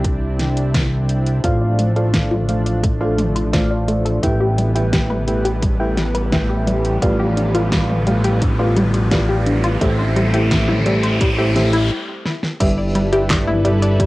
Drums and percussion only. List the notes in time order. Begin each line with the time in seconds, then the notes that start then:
0.04 kick, closed hi-hat
0.39 snare, closed hi-hat
0.57 closed hi-hat
0.74 kick, snare, closed hi-hat
1.09 closed hi-hat
1.27 closed hi-hat
1.44 kick, closed hi-hat
1.79 closed hi-hat
1.96 closed hi-hat
2.14 kick, snare, closed hi-hat
2.31 mid tom
2.49 closed hi-hat
2.66 closed hi-hat
2.84 kick, closed hi-hat
3.19 closed hi-hat, mid tom
3.36 closed hi-hat
3.53 kick, snare, closed hi-hat
3.88 closed hi-hat
4.06 closed hi-hat
4.23 kick, closed hi-hat
4.58 closed hi-hat
4.75 closed hi-hat
4.93 kick, snare, closed hi-hat
5.10 mid tom
5.28 closed hi-hat
5.45 closed hi-hat
5.63 kick, closed hi-hat
5.98 snare, closed hi-hat
6.15 closed hi-hat
6.32 kick, snare, closed hi-hat
6.67 closed hi-hat
6.85 closed hi-hat
7.02 kick, closed hi-hat
7.37 closed hi-hat
7.55 closed hi-hat
7.72 kick, snare, closed hi-hat
7.89 mid tom
8.07 closed hi-hat
8.24 closed hi-hat
8.42 kick, closed hi-hat
8.77 closed hi-hat, mid tom
8.94 closed hi-hat
9.11 kick, snare, closed hi-hat
9.46 closed hi-hat
9.64 closed hi-hat
9.81 kick, closed hi-hat
10.16 closed hi-hat
10.34 closed hi-hat
10.51 kick, snare, closed hi-hat
10.69 mid tom
10.86 closed hi-hat
11.03 closed hi-hat
11.21 kick, closed hi-hat
11.56 snare, closed hi-hat
11.73 closed hi-hat
12.25 snare
12.43 snare
12.60 kick, closed hi-hat, crash
12.95 closed hi-hat
13.13 closed hi-hat
13.30 kick, snare, clap, closed hi-hat
13.48 mid tom
13.65 closed hi-hat
13.83 closed hi-hat
14.00 kick, closed hi-hat